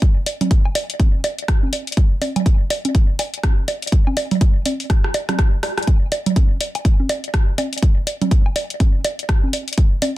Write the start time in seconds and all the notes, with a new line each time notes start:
0.02 kick
0.26 open hi-hat, high bongo
0.41 closed hi-hat, high conga, low conga
0.51 kick, closed hi-hat
0.65 high woodblock
0.75 open hi-hat, high bongo
0.90 closed hi-hat
1.00 kick, closed hi-hat, high conga
1.24 open hi-hat, high bongo
1.39 closed hi-hat
1.48 kick, cross-stick, closed hi-hat, high woodblock
1.63 high conga
1.73 open hi-hat, high bongo
1.87 closed hi-hat
1.92 closed hi-hat
1.97 kick
2.22 open hi-hat, high bongo, high conga
2.36 closed hi-hat, low conga, high woodblock
2.46 kick, closed hi-hat
2.70 open hi-hat, high bongo
2.85 closed hi-hat, high conga
2.95 kick, closed hi-hat
3.19 open hi-hat, high bongo, high woodblock
3.34 closed hi-hat
3.43 kick, cross-stick, closed hi-hat, high conga
3.68 open hi-hat, high bongo
3.82 closed hi-hat
3.87 closed hi-hat
3.92 kick, closed hi-hat
4.07 high conga, high woodblock
4.17 open hi-hat, high bongo
4.31 open hi-hat, low conga
4.41 kick, closed hi-hat
4.66 open hi-hat, high bongo, high conga
4.80 open hi-hat
4.90 kick, cross-stick, closed hi-hat, high woodblock
5.04 cross-stick
5.14 open hi-hat, high bongo
5.29 cross-stick, closed hi-hat, high conga, low conga
5.39 kick, cross-stick, closed hi-hat
5.63 cross-stick, open hi-hat, high bongo
5.78 cross-stick, closed hi-hat, high woodblock
5.83 closed hi-hat
5.87 kick, closed hi-hat, high woodblock
6.12 open hi-hat, high bongo
6.26 closed hi-hat, low conga
6.36 kick, closed hi-hat, high conga
6.61 open hi-hat, high bongo
6.75 closed hi-hat, high woodblock
6.85 kick, closed hi-hat
7.00 high conga
7.09 open hi-hat, high bongo
7.24 closed hi-hat
7.34 kick, cross-stick, closed hi-hat
7.58 open hi-hat, high bongo, high conga, high woodblock
7.73 closed hi-hat
7.78 closed hi-hat
7.83 kick, closed hi-hat
8.07 open hi-hat, high bongo
8.21 closed hi-hat, high conga, low conga
8.31 kick, closed hi-hat
8.46 high woodblock
8.56 open hi-hat, high bongo
8.70 closed hi-hat
8.80 kick, closed hi-hat, high conga
9.04 open hi-hat, high bongo
9.19 closed hi-hat
9.29 kick, cross-stick, closed hi-hat, high woodblock
9.44 high conga
9.53 open hi-hat, high bongo
9.68 closed hi-hat
9.73 closed hi-hat
9.78 kick
10.02 open hi-hat, high bongo, high conga